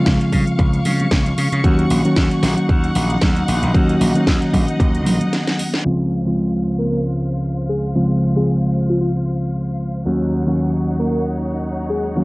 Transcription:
0.00 1.61 C#3 medium
0.00 1.61 F3 medium
0.00 1.61 G#3 medium
0.00 1.62 C4 medium
0.00 1.62 F4 medium
0.00 1.60 F5 medium
0.00 3.71 C#6 medium
0.06 0.17 C#2 loud
0.06 kick loud
0.06 snare loud
0.06 closed hi-hat medium
0.21 closed hi-hat soft
0.32 0.43 C#3 loud
0.32 kick medium
0.32 open hi-hat medium
0.32 low conga medium
0.47 closed hi-hat soft
0.59 0.79 C#2 medium
0.59 kick loud
0.59 closed hi-hat medium
0.73 closed hi-hat soft
0.85 1.06 C#3 medium
0.85 open hi-hat medium
0.85 low conga medium
1.00 closed hi-hat soft
1.00 high conga medium
1.00 low conga medium
1.11 1.32 C#2 medium
1.11 kick loud
1.11 snare loud
1.11 closed hi-hat medium
1.26 closed hi-hat soft
1.38 1.49 C#3 medium
1.38 open hi-hat medium
1.52 1.61 C#3 medium
1.52 closed hi-hat soft
1.64 1.84 D#2 loud
1.64 2.01 D#3 medium
1.64 2.01 F#3 medium
1.64 2.02 A#3 medium
1.64 2.02 C#4 medium
1.64 5.81 D#4 medium
1.64 2.02 F#4 loud
1.64 5.81 F#5 medium
1.64 kick loud
1.64 closed hi-hat medium
1.79 closed hi-hat soft
1.90 2.01 A#1 medium
1.90 open hi-hat medium
2.04 3.71 D#3 medium
2.04 3.72 F#3 medium
2.04 3.72 A#3 medium
2.04 3.72 C#4 medium
2.04 3.72 F#4 medium
2.04 closed hi-hat soft
2.17 2.27 D#2 loud
2.17 kick loud
2.17 snare loud
2.17 closed hi-hat medium
2.31 closed hi-hat soft
2.43 2.54 A#1 loud
2.43 snare medium
2.43 open hi-hat medium
2.43 low conga medium
2.58 closed hi-hat soft
2.69 2.90 D#2 medium
2.69 kick loud
2.69 closed hi-hat medium
2.84 closed hi-hat soft
2.95 3.16 A#1 loud
2.95 open hi-hat medium
3.10 closed hi-hat soft
3.10 high conga medium
3.22 3.42 D#2 medium
3.22 kick loud
3.22 snare loud
3.22 closed hi-hat medium
3.22 low conga medium
3.36 closed hi-hat soft
3.48 3.59 A#1 medium
3.48 open hi-hat medium
3.63 3.72 A#1 medium
3.63 closed hi-hat soft
3.74 3.95 D#2 loud
3.74 4.12 D#3 medium
3.74 4.12 F#3 medium
3.74 4.12 A#3 medium
3.74 4.12 C#4 medium
3.74 4.12 F#4 loud
3.74 5.83 D#5 medium
3.74 kick loud
3.74 closed hi-hat medium
3.89 closed hi-hat soft
4.01 4.12 A#1 medium
4.01 open hi-hat loud
4.14 5.82 D#3 medium
4.14 5.82 F#3 medium
4.14 5.82 A#3 medium
4.14 5.83 C#4 medium
4.14 5.83 F#4 medium
4.14 muted slap bass stroke soft
4.14 closed hi-hat soft
4.27 4.38 D#2 loud
4.27 kick loud
4.27 snare loud
4.27 closed hi-hat medium
4.42 closed hi-hat soft
4.53 4.64 A#1 loud
4.53 kick medium
4.53 open hi-hat medium
4.53 low conga medium
4.68 closed hi-hat soft
4.80 5.06 D#2 loud
4.80 kick loud
4.80 closed hi-hat medium
4.95 closed hi-hat soft
5.06 5.17 A#1 loud
5.06 open hi-hat medium
5.06 low conga medium
5.21 muted slap bass stroke soft
5.21 closed hi-hat soft
5.21 high conga medium
5.21 low conga medium
5.33 snare medium
5.33 closed hi-hat medium
5.47 snare medium
5.47 closed hi-hat soft
5.59 open hi-hat medium
5.59 high conga medium
5.74 snare medium
5.85 10.04 C#2 medium
5.85 6.22 C#3 medium
5.85 6.22 F3 medium
5.85 6.22 G#3 medium
5.85 6.23 C4 medium
5.85 6.23 F4 medium
5.85 10.02 C5 medium
5.85 10.02 F5 medium
6.25 7.92 C#3 medium
6.25 7.93 F3 medium
6.25 7.93 G#3 medium
6.25 7.93 C4 medium
6.25 7.93 F4 medium
6.79 6.86 A#4 medium
6.91 7.00 A#4 medium
7.69 7.86 G#4 medium
7.95 8.33 C#3 medium
7.95 8.33 F3 medium
7.95 8.33 G#3 medium
7.95 8.33 C4 medium
7.95 8.33 F4 medium
8.35 10.03 C#3 medium
8.35 10.03 F3 medium
8.35 10.03 G#3 medium
8.35 10.04 C4 medium
8.35 10.04 F4 medium
8.35 8.50 G#4 medium
8.89 8.97 F4 medium
9.01 9.10 F4 medium
10.05 12.24 D#2 medium
10.05 10.43 D#3 medium
10.05 10.43 F#3 medium
10.05 10.43 A#3 medium
10.05 10.44 C#4 medium
10.05 12.24 D#4 medium
10.05 10.44 F#4 medium
10.05 12.24 C#5 medium
10.05 12.24 F#5 medium
10.46 12.13 D#3 medium
10.46 12.14 F#3 medium
10.46 12.14 A#3 medium
10.46 12.14 C#4 medium
10.46 12.14 F#4 medium
10.99 11.07 A#4 medium
11.11 11.20 A#4 medium
11.90 12.06 G#4 medium
12.16 12.24 D#3 medium
12.16 12.24 F#3 medium
12.16 12.24 A#3 medium
12.16 12.24 C#4 medium
12.16 12.24 F#4 medium

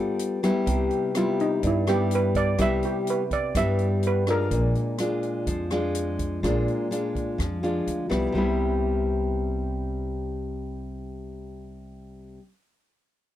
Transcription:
0.00 0.42 G3 medium
0.00 0.38 B3 medium
0.00 0.38 F4 soft
0.00 0.38 A4 medium
0.00 0.39 A4 medium
0.19 closed hi-hat soft
0.43 1.11 G3 medium
0.43 1.11 B3 soft
0.43 1.11 E4 medium
0.43 cross-stick medium
0.43 closed hi-hat soft
0.66 0.89 C2 medium
0.66 1.60 C3 medium
0.66 kick soft
0.66 closed hi-hat soft
0.91 closed hi-hat soft
1.15 1.83 G3 soft
1.15 1.83 B3 medium
1.15 1.83 E4 medium
1.15 1.39 F4 medium
1.15 cross-stick medium
1.15 closed hi-hat soft
1.40 1.63 D#4 medium
1.40 closed hi-hat soft
1.63 2.56 G2 medium
1.63 2.55 G2 medium
1.63 kick soft
1.63 closed hi-hat soft
1.67 1.88 E4 medium
1.87 2.55 G3 medium
1.87 2.55 B3 medium
1.87 2.55 E4 medium
1.87 2.11 G4 medium
1.87 cross-stick medium
1.87 closed hi-hat soft
2.11 closed hi-hat soft
2.15 2.36 B4 medium
2.35 2.59 D5 medium
2.35 kick medium
2.35 closed hi-hat soft
2.58 2.81 C2 medium
2.58 3.52 C3 medium
2.58 3.23 G3 medium
2.58 3.23 B3 medium
2.58 3.23 E4 medium
2.58 2.83 E5 medium
2.58 kick medium
2.58 cross-stick soft
2.58 closed hi-hat soft
2.83 3.07 G4 medium
2.83 closed hi-hat soft
3.07 3.32 B4 medium
3.07 closed hi-hat soft
3.31 3.55 D5 medium
3.31 kick soft
3.31 closed hi-hat soft
3.55 4.47 G2 medium
3.55 4.49 G2 medium
3.55 4.23 G3 medium
3.55 4.23 B3 medium
3.55 4.23 E4 medium
3.55 4.01 E5 medium
3.55 kick medium
3.55 cross-stick soft
3.55 closed hi-hat soft
3.79 closed hi-hat soft
4.03 closed hi-hat soft
4.07 4.28 B4 medium
4.27 4.95 G#3 medium
4.27 4.95 D4 medium
4.27 4.96 F4 medium
4.27 4.73 A#4 medium
4.27 cross-stick medium
4.27 closed hi-hat soft
4.51 4.73 A#1 medium
4.51 5.45 A#2 medium
4.51 kick soft
4.51 closed hi-hat soft
4.75 closed hi-hat soft
4.98 5.67 G#3 soft
4.98 5.67 D4 medium
4.98 5.68 F4 medium
4.98 cross-stick medium
4.98 closed hi-hat soft
5.23 closed hi-hat soft
5.47 6.39 F2 medium
5.47 6.41 F3 medium
5.47 kick soft
5.47 closed hi-hat soft
5.71 6.40 G#3 medium
5.71 6.40 D4 medium
5.71 6.40 F4 medium
5.71 cross-stick medium
5.71 closed hi-hat soft
5.95 closed hi-hat soft
6.19 kick soft
6.19 closed hi-hat soft
6.43 6.66 A#1 medium
6.43 7.37 A#2 soft
6.43 6.87 G#3 soft
6.43 6.87 D4 medium
6.43 6.87 F4 medium
6.43 kick soft
6.43 cross-stick soft
6.43 closed hi-hat soft
6.68 closed hi-hat soft
6.91 7.59 G#3 soft
6.91 7.60 D4 soft
6.91 7.60 F4 soft
6.91 closed hi-hat soft
7.15 kick soft
7.15 closed hi-hat soft
7.38 7.84 F2 medium
7.38 8.32 F3 soft
7.38 kick soft
7.38 cross-stick soft
7.38 closed hi-hat soft
7.63 8.07 G#3 medium
7.63 8.08 D4 medium
7.63 8.08 F4 medium
7.63 closed hi-hat soft
7.87 8.09 D2 medium
7.87 closed hi-hat soft
8.09 8.33 C2 medium
8.09 8.34 G3 medium
8.09 8.35 B3 medium
8.09 8.36 E4 medium
8.09 cross-stick medium
8.09 closed hi-hat soft
8.32 12.36 C2 medium
8.32 12.38 C3 medium
8.32 12.41 G3 medium
8.32 12.42 B3 medium
8.38 12.44 E4 medium

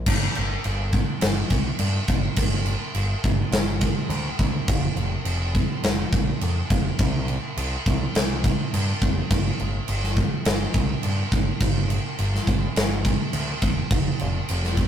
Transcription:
0.06 0.26 G1 loud
0.06 kick loud
0.06 crash loud
0.06 crash medium
0.35 0.55 G1 medium
0.35 crash medium
0.64 1.02 G1 medium
0.64 crash medium
0.93 kick medium
0.93 crash soft
1.21 1.41 G1 medium
1.21 snare loud
1.21 crash medium
1.50 1.70 C2 medium
1.50 kick medium
1.50 crash medium
1.79 1.98 G2 medium
1.79 crash medium
2.08 2.27 G1 medium
2.08 kick medium
2.08 crash medium
2.36 2.74 G1 medium
2.36 kick loud
2.36 crash loud
2.66 crash medium
2.94 3.13 G1 medium
2.94 crash medium
3.24 3.43 G1 medium
3.24 kick medium
3.24 crash soft
3.51 3.89 G1 loud
3.51 snare loud
3.51 crash medium
3.81 kick medium
3.81 crash medium
4.09 4.28 D2 medium
4.09 crash medium
4.39 4.58 D2 medium
4.39 kick medium
4.39 crash medium
4.68 4.87 F1 loud
4.68 kick loud
4.68 crash medium
4.96 5.15 F1 medium
4.96 crash soft
5.24 5.62 F1 medium
5.24 crash medium
5.55 kick medium
5.55 crash medium
5.83 6.02 F1 medium
5.83 snare loud
5.83 crash medium
6.13 6.31 A#1 medium
6.13 kick loud
6.13 crash medium
6.41 6.60 F2 medium
6.41 crash medium
6.70 6.89 F1 medium
6.70 kick medium
6.70 crash medium
6.99 7.37 C2 loud
6.99 kick loud
6.99 crash medium
7.28 crash medium
7.57 7.76 C2 medium
7.57 crash medium
7.86 8.05 C2 medium
7.86 kick medium
7.86 crash medium
8.15 8.52 C2 medium
8.15 snare loud
8.15 crash medium
8.44 kick medium
8.44 crash medium
8.74 8.92 G2 medium
8.74 crash medium
9.02 9.20 F1 medium
9.02 kick medium
9.02 crash medium
9.31 9.49 G1 loud
9.31 kick loud
9.31 crash medium
9.60 9.78 G1 loud
9.60 crash soft
9.88 10.25 G1 medium
9.88 crash medium
10.03 snare soft
10.16 kick medium
10.16 crash soft
10.45 10.64 G1 loud
10.45 snare loud
10.45 crash medium
10.74 10.93 C2 medium
10.74 kick medium
10.74 crash medium
11.03 11.22 G2 medium
11.03 crash medium
11.32 11.51 G1 medium
11.32 kick medium
11.32 crash medium
11.60 11.98 G1 loud
11.60 kick loud
11.60 crash medium
11.90 crash medium
12.19 12.37 G1 medium
12.19 crash medium
12.35 snare soft
12.47 12.66 G1 medium
12.47 kick medium
12.47 crash medium
12.76 13.13 G1 medium
12.76 snare loud
12.76 crash medium
13.05 kick medium
13.05 crash medium
13.33 13.52 D2 medium
13.33 crash medium
13.62 13.81 E1 medium
13.62 kick medium
13.62 crash medium
13.91 14.10 F1 loud
13.91 kick loud
13.91 crash medium
14.19 14.39 F1 loud
14.19 crash medium
14.49 14.86 F1 medium
14.49 crash medium
14.64 snare soft
14.77 kick medium
14.77 crash soft

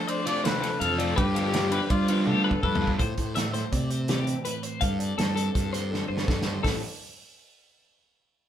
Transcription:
0.00 0.81 F3 medium
0.00 1.15 A3 medium
0.00 0.63 F4 medium
0.00 0.11 A4 medium
0.07 1.15 D4 medium
0.07 0.26 C5 medium
0.07 0.44 D5 medium
0.07 ride medium
0.26 0.43 F3 medium
0.26 0.44 A3 medium
0.26 0.44 C4 medium
0.26 0.44 F4 medium
0.26 1.18 A4 medium
0.26 0.47 D5 loud
0.26 ride medium
0.44 1.15 C3 medium
0.44 0.68 F3 medium
0.44 0.68 A3 medium
0.44 0.68 C4 medium
0.44 0.69 F4 medium
0.44 0.83 B4 medium
0.44 0.62 C5 medium
0.44 snare loud
0.44 ride loud
0.62 1.15 F4 medium
0.62 0.80 A4 medium
0.62 snare soft
0.62 ride medium
0.80 1.11 F2 loud
0.80 0.99 E3 medium
0.80 1.19 A4 loud
0.80 0.98 F5 medium
0.80 ride loud
0.98 1.17 F3 medium
0.98 1.18 F3 medium
0.98 1.17 A3 medium
0.98 1.17 C4 medium
0.98 1.17 F4 medium
0.98 1.16 D5 medium
0.98 ride medium
1.16 1.78 G2 medium
1.16 2.80 G3 medium
1.16 1.70 D4 medium
1.16 1.34 F4 medium
1.16 1.90 G4 medium
1.16 1.35 B4 medium
1.16 kick loud
1.16 ride loud
1.35 1.52 D3 medium
1.35 1.52 F3 loud
1.35 1.53 B3 loud
1.35 1.53 F4 loud
1.35 1.53 F4 medium
1.35 1.72 G4 medium
1.35 ride medium
1.53 1.77 D3 medium
1.53 1.77 F3 medium
1.53 1.77 B3 medium
1.53 1.71 F4 medium
1.53 1.77 F4 medium
1.53 snare loud
1.53 ride loud
1.72 1.89 D4 medium
1.72 2.45 F4 medium
1.72 1.90 B4 medium
1.72 ride medium
1.90 2.51 G3 medium
1.90 2.08 D4 medium
1.90 2.28 F4 medium
1.90 2.08 D5 medium
1.90 kick loud
1.90 ride medium
2.08 2.26 D3 medium
2.08 2.26 F3 medium
2.08 2.27 B3 medium
2.08 2.97 D4 medium
2.08 2.26 F4 medium
2.08 2.26 B4 medium
2.08 ride medium
2.26 2.63 D3 medium
2.26 2.50 D3 medium
2.26 2.50 F3 medium
2.26 2.51 B3 medium
2.26 2.51 F4 medium
2.26 2.44 G4 medium
2.26 2.65 A4 medium
2.26 high tom medium
2.44 2.98 F4 medium
2.44 2.62 B4 medium
2.51 kick medium
2.63 2.93 G2 medium
2.63 2.81 F3 medium
2.63 2.99 A4 medium
2.63 2.91 B4 medium
2.63 kick loud
2.75 floor tom loud
2.82 3.00 D3 medium
2.82 3.00 F3 medium
2.82 2.99 G3 medium
2.82 3.00 B3 medium
2.82 3.00 F4 medium
2.87 kick medium
2.99 4.45 A2 medium
2.99 3.14 A2 medium
2.99 3.35 G4 medium
2.99 3.35 C5 medium
2.99 kick loud
2.99 closed hi-hat medium
3.18 3.63 A2 medium
3.18 3.26 A4 medium
3.18 kick medium
3.18 closed hi-hat medium
3.26 4.08 B4 medium
3.35 3.46 E4 medium
3.35 3.53 E5 medium
3.35 snare loud
3.35 closed hi-hat loud
3.46 3.90 G4 medium
3.54 4.83 A3 medium
3.54 3.72 C5 medium
3.54 snare soft
3.54 closed hi-hat medium
3.72 4.33 C3 medium
3.72 4.28 C4 medium
3.72 3.90 D5 medium
3.72 kick medium
3.72 closed hi-hat medium
3.90 4.47 G4 medium
3.90 4.09 C5 medium
3.90 closed hi-hat medium
4.08 4.79 E3 medium
4.08 4.44 G4 medium
4.08 4.64 B4 medium
4.08 snare loud
4.08 closed hi-hat medium
4.27 5.37 C4 medium
4.27 closed hi-hat medium
4.45 4.82 A2 medium
4.45 4.55 E4 medium
4.45 4.63 B4 medium
4.45 closed hi-hat medium
4.55 4.82 G4 soft
4.63 4.80 B4 medium
4.63 4.82 C5 medium
4.63 closed hi-hat medium
4.81 5.12 G2 loud
4.81 6.28 G3 medium
4.81 5.00 A4 medium
4.81 4.99 F5 medium
4.81 kick loud
4.81 closed hi-hat medium
4.99 5.19 A4 medium
4.99 5.18 D5 medium
4.99 closed hi-hat medium
5.18 5.49 G2 medium
5.18 5.34 A4 medium
5.18 5.74 A4 medium
5.18 snare loud
5.18 closed hi-hat medium
5.36 6.66 C4 medium
5.36 5.72 A4 medium
5.36 closed hi-hat medium
5.55 6.01 G2 medium
5.55 6.10 F4 medium
5.55 kick loud
5.55 closed hi-hat medium
5.73 5.92 A4 medium
5.73 5.91 C5 medium
5.73 snare soft
5.73 closed hi-hat medium
5.91 6.65 D3 medium
5.91 6.08 A4 medium
5.91 6.29 C5 medium
5.91 snare medium
6.08 6.25 G2 medium
6.08 6.63 F4 medium
6.08 6.27 C5 medium
6.17 snare medium
6.27 6.58 G2 medium
6.27 6.66 G3 medium
6.27 6.45 A4 medium
6.27 6.46 A4 medium
6.27 kick loud
6.27 snare medium
6.42 6.63 C5 medium
6.42 snare medium
6.47 6.68 A4 medium
6.63 6.81 A1 medium
6.63 6.81 A2 medium
6.63 6.82 A3 medium
6.63 6.82 C4 medium
6.63 6.81 A4 medium
6.63 kick medium
6.63 snare medium
6.63 open hi-hat medium
6.68 6.82 G4 medium
6.68 6.83 B4 medium

